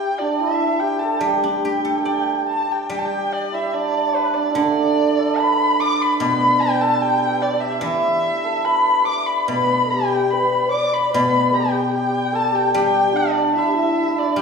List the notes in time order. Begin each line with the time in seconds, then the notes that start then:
Already playing: E3 E4 G4 G5
0.00 G4
0.18 D4 D5
0.39 E4 E5
0.80 G4 G5
0.99 A4 A5
1.19 G3 G4 G5
1.43 D4
1.65 G4
1.85 A4
1.99 A4 G5
2.05 G4 D5
2.49 A5
2.68 G4 G5
2.89 G3 G4 G5
2.99 A5
3.04 G4 G5
3.33 D5
3.52 E4 E5
3.73 D4 D5
4.16 B4
4.34 D4 D5
4.50 E4
4.55 D3 D4 D5
5.19 A4
5.38 B4 B5
5.80 D5 D6
6.02 B5
6.20 B2 B4 B5
6.29 B4
6.36 B4
6.43 B4
6.50 B4
6.57 B4
6.61 G5
6.66 B4
6.81 A4 A5
7.01 G4 G5
7.10 G4
7.17 G4
7.23 G4
7.31 G4
7.38 G4
7.42 G4 D5
7.53 G4
7.60 G4 E5
7.68 G4
7.81 E3 E4 E5
8.44 A4
8.65 B4 B5
9.01 E5
9.05 D5 D6
9.26 B5
9.48 B2 B4 B5
9.85 A4
9.91 G4 G5
10.31 B4 B5
10.71 D5 D6
10.94 B5
11.07 D5
11.11 B2 B4 B5
11.51 G4 G5
11.59 A4
11.65 G4
11.90 G4 G5
12.32 A4 A5
12.52 G4 G5
12.73 G3 G4 G5
13.13 D4 D5
13.54 E4 E5
13.63 E4
13.68 E4 G4
13.75 E4 E5
13.79 E4
13.86 E4
13.93 E4
14.01 E4
14.08 E4
14.16 D4 E4 D5
14.22 E4
14.36 G3 G4 G5